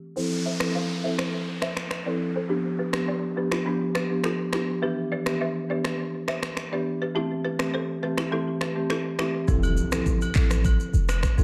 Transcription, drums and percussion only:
0.60 finger snap medium
0.60 cross-stick loud
1.19 finger snap medium
1.19 cross-stick medium
1.62 finger snap medium
1.62 cross-stick medium
1.77 finger snap medium
1.77 cross-stick medium
1.91 finger snap medium
1.91 cross-stick medium
2.93 finger snap medium
2.93 cross-stick loud
3.52 finger snap medium
3.52 cross-stick loud
3.95 finger snap medium
3.95 cross-stick medium
4.24 finger snap medium
4.24 cross-stick medium
4.53 finger snap medium
4.53 cross-stick loud
5.26 finger snap medium
5.26 cross-stick loud
5.85 finger snap medium
5.85 cross-stick loud
6.28 finger snap medium
6.28 cross-stick medium
6.43 finger snap medium
6.43 cross-stick medium
6.57 finger snap medium
6.57 cross-stick medium
7.59 finger snap medium
7.59 cross-stick loud
8.18 finger snap medium
8.18 cross-stick medium
8.61 finger snap medium
8.61 cross-stick medium
8.90 finger snap medium
8.90 cross-stick medium
9.19 finger snap medium
9.19 cross-stick loud
9.48 kick loud
9.48 shaker medium
9.63 high agogo medium
9.63 shaker soft
9.77 shaker medium
9.92 finger snap medium
9.92 cross-stick loud
9.92 shaker medium
10.06 kick medium
10.06 shaker medium
10.21 high agogo medium
10.21 shaker medium
10.35 kick loud
10.35 clap medium
10.35 shaker medium
10.51 finger snap medium
10.51 cross-stick loud
10.51 shaker medium
10.65 kick loud
10.65 high agogo medium
10.65 shaker medium
10.80 shaker medium
10.94 shaker soft
11.09 finger snap medium
11.09 cross-stick medium
11.09 high agogo medium
11.09 shaker loud
11.23 finger snap medium
11.23 kick medium
11.23 cross-stick medium
11.23 shaker medium
11.38 shaker medium

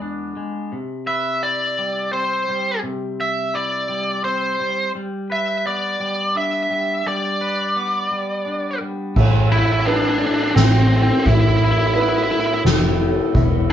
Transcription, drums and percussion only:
9.16 kick medium
9.16 crash medium
9.86 ride medium
10.56 snare medium
10.56 ride medium
10.92 ride medium
11.26 kick medium
11.26 ride medium
11.96 ride medium
12.65 snare medium
12.65 ride medium
13.00 ride medium
13.35 kick medium
13.35 ride medium

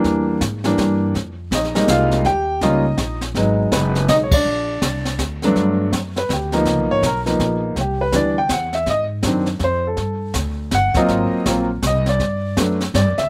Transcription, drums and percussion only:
0.04 brush sweep soft
0.04 kick soft
0.04 snare soft
0.41 kick soft
0.41 snare medium
0.41 hi-hat pedal medium
0.64 snare medium
0.78 kick soft
0.78 snare soft
1.15 brush sweep soft
1.15 kick soft
1.15 snare soft
1.51 kick soft
1.51 snare medium
1.51 hi-hat pedal medium
1.64 snare soft
1.75 snare soft
1.88 kick soft
1.88 snare medium
1.88 hi-hat pedal medium
2.11 snare soft
2.25 brush sweep soft
2.25 kick soft
2.25 snare soft
2.61 kick soft
2.61 snare medium
2.98 kick soft
2.98 snare medium
2.98 hi-hat pedal medium
3.21 snare soft
3.35 brush sweep soft
3.35 kick soft
3.35 snare soft
3.72 kick soft
3.72 snare medium
3.72 hi-hat pedal medium
3.95 snare soft
4.08 kick soft
4.08 snare medium
4.08 hi-hat pedal medium
4.31 kick loud
4.31 crash medium
4.45 brush sweep soft
4.82 kick soft
4.82 snare medium
4.82 hi-hat pedal medium
5.05 snare soft
5.19 kick soft
5.19 snare medium
5.19 hi-hat pedal medium
5.42 snare soft
5.56 brush sweep soft
5.56 kick soft
5.56 snare soft
5.92 kick soft
5.92 snare medium
5.92 hi-hat pedal medium
6.16 snare soft
6.29 kick soft
6.29 snare medium
6.29 hi-hat pedal medium
6.52 snare soft
6.65 brush sweep soft
6.65 kick soft
6.65 snare soft
7.02 kick soft
7.02 snare medium
7.02 hi-hat pedal medium
7.26 snare soft
7.39 kick soft
7.39 snare soft
7.76 brush sweep soft
7.76 kick soft
7.76 snare soft
8.12 kick soft
8.12 snare medium
8.12 hi-hat pedal medium
8.49 kick soft
8.49 snare medium
8.49 hi-hat pedal medium
8.73 snare soft
8.86 brush sweep soft
8.86 kick soft
8.86 snare soft
9.23 kick soft
9.23 snare medium
9.23 hi-hat pedal medium
9.46 snare soft
9.59 kick soft
9.59 snare soft
9.97 brush sweep soft
9.97 kick soft
9.97 snare soft
10.34 kick soft
10.34 snare medium
10.34 hi-hat pedal medium
10.71 kick soft
10.71 snare medium
10.71 hi-hat pedal medium
10.94 kick medium
10.94 snare soft
11.08 brush sweep soft
11.08 kick soft
11.08 snare soft
11.46 kick soft
11.46 snare medium
11.46 hi-hat pedal medium
11.82 kick soft
11.82 snare medium
11.82 hi-hat pedal medium
12.06 snare soft
12.20 brush sweep soft
12.20 kick soft
12.20 snare soft
12.57 kick soft
12.57 snare medium
12.57 hi-hat pedal medium
12.81 snare soft
12.94 kick soft
12.94 snare medium
12.94 hi-hat pedal medium
13.18 snare soft

